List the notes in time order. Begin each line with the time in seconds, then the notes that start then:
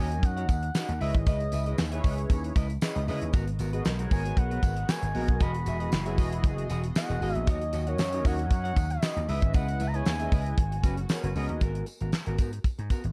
Already playing: D#2 C#4 D#4 F#4 A#4 C#5 D#5
0.00 G#5
0.11 muted clean electric guitar stroke, closed hi-hat
0.23 F#2 F#5, muted clean electric guitar stroke, kick, closed hi-hat, tambourine
0.37 F#4 C#5 F#5, closed hi-hat
0.49 D#2, muted clean electric guitar stroke, kick, closed hi-hat, tambourine
0.63 muted clean electric guitar stroke, closed hi-hat
0.75 C#4 D#4 F#4 A#4 D#5, snare, clap, tambourine
0.88 D#2, muted clean electric guitar stroke, closed hi-hat
1.01 C#2 C#4 E4 G#4 B4 D#5 E5, open hi-hat
1.14 G#1, muted clean electric guitar stroke, kick, closed hi-hat
1.26 C#2 E4 B4 D#5, kick, closed hi-hat, tambourine
1.40 muted clean electric guitar stroke, closed hi-hat
1.52 C#2 E4 B4 E5, closed hi-hat, tambourine
1.66 C#4 E4 G#4 B4 D#5, closed hi-hat
1.78 D#2, muted clean electric guitar stroke, snare, clap, tambourine
1.92 C#4 E4 G#4 B4 C#5 E5, closed hi-hat
2.04 C#2 E4 B4 D#5, kick, open hi-hat, tambourine
2.18 muted clean electric guitar stroke, closed hi-hat
2.30 D#2, muted clean electric guitar stroke, kick, closed hi-hat, tambourine
2.43 muted clean electric guitar stroke, closed hi-hat
2.55 C#2 E4 B4 D#5, kick, closed hi-hat, tambourine
2.69 muted clean electric guitar stroke, closed hi-hat
2.81 C#4 E4 G#4 B4 D#5, muted clean electric guitar stroke, snare, clap, tambourine
2.95 C#2 E4 B4 D#5, closed hi-hat
3.07 C#2 C#4 E4 G#4 B4 D#5, open hi-hat, tambourine
3.21 D#2, muted clean electric guitar stroke, closed hi-hat
3.33 G#1 G#3 B3 F#4 A#4 D#5, kick, closed hi-hat, tambourine
3.47 muted clean electric guitar stroke, closed hi-hat
3.59 G#1 B3 F#4 A#4, closed hi-hat, tambourine
3.73 B3 F#4 G#4 A#4 B4 D#5, closed hi-hat
3.85 B1, snare, clap, tambourine
3.99 B3 F#4 G#4 A#4 C#5, closed hi-hat
4.11 G#1 B3 F#4 A#4 G#5, kick, open hi-hat, tambourine
4.25 muted clean electric guitar stroke, closed hi-hat
4.37 B1 F#5, muted clean electric guitar stroke, kick, closed hi-hat
4.51 B3 F#4 B4, closed hi-hat
4.63 G#1, kick, closed hi-hat, tambourine
4.76 muted clean electric guitar stroke, closed hi-hat
4.89 B3 F#4 G#4 A#4 C#5 G#5, snare, clap, tambourine
5.02 G#1, muted clean electric guitar stroke, closed hi-hat
5.15 A#1 B3 F#4 G#4 A#4 D#5, open hi-hat
5.28 B1, muted clean electric guitar stroke, kick, closed hi-hat
5.40 E1 E3 B3 F#4 G#4 D#5 B5, kick, closed hi-hat, tambourine
5.54 muted clean electric guitar stroke, closed hi-hat
5.66 E1 F#4 G#4 E5, closed hi-hat, tambourine
5.80 B3 E4 F#4 G#4 D#5, closed hi-hat
5.92 F#1, snare, clap, tambourine
6.06 B3 E4 F#4 G#4 C#5 E5, closed hi-hat
6.13 D#5
6.18 E1 F#4 G#4 D#5, kick, open hi-hat, tambourine
6.32 muted clean electric guitar stroke, closed hi-hat
6.44 F#1, kick, closed hi-hat, tambourine
6.58 muted clean electric guitar stroke, closed hi-hat
6.70 E1 F#4 G#4 D#5, closed hi-hat, tambourine
6.84 muted clean electric guitar stroke, closed hi-hat
6.95 B3 E4 F#4 G#4 D#5 F#5, muted clean electric guitar stroke, snare, clap, tambourine
7.09 E1 F#4 G#4 D#5, closed hi-hat
7.21 G#1 B3 E4 F#4 G#4 D#5, open hi-hat, tambourine
7.35 A#1 E5, muted clean electric guitar stroke, closed hi-hat
7.47 D#2 F#3 C#4 F#4 C#5 D#5, kick, closed hi-hat, tambourine
7.61 muted clean electric guitar stroke, closed hi-hat
7.73 D#2 F#4 C#5 D#5, closed hi-hat, tambourine
7.80 D#5
7.87 C#4 D#4 F#4 A#4 C#5 D#5 F#5, closed hi-hat
7.98 F#2, muted clean electric guitar stroke, snare, clap, tambourine
8.12 C#4 D#4 F#4 A#4 C#5 D#5, closed hi-hat
8.24 D#2 F#4 C#5 D#5 F#5, kick, open hi-hat, tambourine
8.38 muted clean electric guitar stroke, closed hi-hat
8.50 F#2 F#5, muted clean electric guitar stroke, kick, closed hi-hat, tambourine
8.64 F#4 C#5 F#5, closed hi-hat
8.76 D#2, muted clean electric guitar stroke, kick, closed hi-hat, tambourine
8.90 D#5, muted clean electric guitar stroke, closed hi-hat
9.02 C#4 D#4 F#4 A#4 D#5, snare, clap, tambourine
9.16 D#2, muted clean electric guitar stroke, closed hi-hat
9.28 C#2 C#3 G#3 B3 C#4 D#4 E4 G#4 B4 D#5 E5, open hi-hat
9.35 E4
9.42 G#1, muted clean electric guitar stroke, kick, closed hi-hat
9.53 C#2 E4 B4 D#5 F#5, kick, closed hi-hat, tambourine
9.68 muted clean electric guitar stroke, closed hi-hat
9.80 C#2 E4 B4 E5, closed hi-hat, tambourine
9.87 A#5
9.94 C#4 E4 G#4 B4 C#5 D#5 G#5, closed hi-hat
10.05 D#2, snare, clap, tambourine
10.20 C#4 E4 G#4 B4 D#5 E5, closed hi-hat
10.32 C#2 E4 B4 D#5, kick, open hi-hat, tambourine
10.46 muted clean electric guitar stroke, closed hi-hat
10.58 G#1 B3 F#4, kick, closed hi-hat
10.72 muted clean electric guitar stroke, closed hi-hat
10.84 F#1 C#4 F#4 B4, kick, closed hi-hat, tambourine
10.97 muted clean electric guitar stroke, closed hi-hat
11.09 B3 F#4 G#4 A#4 C#5, muted clean electric guitar stroke, snare, clap, tambourine
11.23 F#1 C#4 F#4 B4, closed hi-hat
11.35 C#2 B3 C#4 F#4 G#4 A#4 B4 D#5, open hi-hat, tambourine
11.49 D#2, muted clean electric guitar stroke, closed hi-hat
11.61 G#1 B3 F#4 A#4, kick, closed hi-hat, tambourine
11.75 closed hi-hat
11.86 muted clean electric guitar stroke, closed hi-hat, tambourine
12.01 G#1 B3 F#4 A#4, closed hi-hat
12.12 snare, clap, tambourine
12.26 G#1 B3 F#4 A#4, closed hi-hat
12.38 G#2 B3 F#4 A#4, kick, closed hi-hat, tambourine
12.53 closed hi-hat
12.64 muted clean electric guitar stroke, muted slap bass stroke, kick, closed hi-hat, tambourine
12.78 G#2, muted clean electric guitar stroke, closed hi-hat
12.90 B3 F#4 A#4, kick, closed hi-hat, tambourine
13.04 G#1, muted clean electric guitar stroke, closed hi-hat